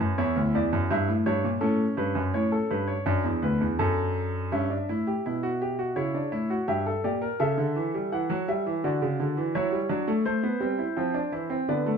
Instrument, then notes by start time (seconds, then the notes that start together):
grand piano
Already playing: F#4 B4
0.00 F#2
0.18 E2 E4 C#5
0.36 D2
0.55 E2 D5
0.73 F#2
0.91 G2 E5
1.08 A2
1.26 G2 C#5
1.44 A#2
1.61 A2 C#4 A4
1.97 G2 B4
2.15 F#2
2.34 A2 C#5
2.52 A4
2.71 G2 B4
2.87 C#5
3.06 F#2 D4 D5
3.25 E2
3.42 D2 B4
3.61 E2
3.79 F#2 A4
4.52 G2 C#4 E5
4.70 D4
4.89 A2 E4
5.07 G4
5.26 B2 E4
5.43 F#4
5.62 G4
5.79 F#4
5.96 C#3 E4 C#5
6.14 D4
6.32 A2 E4
6.50 F#4
6.68 G2 G4 E5
6.87 A4
7.04 A#2 G4 D5
7.22 A#4
7.40 C#3 A4 E5
7.58 D3
7.76 E3
7.94 G3
8.12 E3 F#5
8.30 F#3
8.48 G3 E5
8.66 E3
8.84 D3 F#4 D5
9.02 C#3
9.20 D3
9.37 E3
9.55 F#3 E4 C#5
9.72 G3
9.89 F#3 D4
10.08 A3
10.25 A3 C5
10.43 B3
10.60 G3 C4
10.79 E4
10.97 F3 C4
11.14 D4
11.32 E3 E4
11.50 C4
11.69 D3 B3 D5
11.86 A3